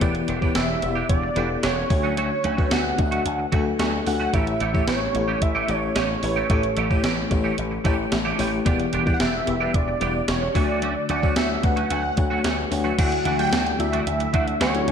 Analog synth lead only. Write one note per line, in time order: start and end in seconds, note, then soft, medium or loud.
0.56 1.06 E5 medium
1.09 1.60 D5 medium
1.64 2.14 C#5 medium
2.18 2.74 C#5 loud
2.72 3.80 F#5 loud
4.07 4.36 F#5 loud
4.34 4.87 E5 loud
4.88 5.44 C#5 medium
5.42 5.71 E5 loud
5.69 6.23 C#5 medium
6.23 7.00 C#5 medium
9.14 9.22 F#5 medium
9.21 9.76 E5 medium
9.75 10.30 D5 medium
10.29 10.55 C#5 medium
10.56 11.06 D5 medium
11.10 11.38 D5 medium
11.36 11.65 E5 loud
11.63 11.90 F#5 loud
11.90 12.41 F#5 loud
12.99 13.36 F#5 loud
13.39 13.77 G5 loud
13.80 14.05 E5 medium
14.07 14.57 E5 loud
14.61 14.92 C#5 medium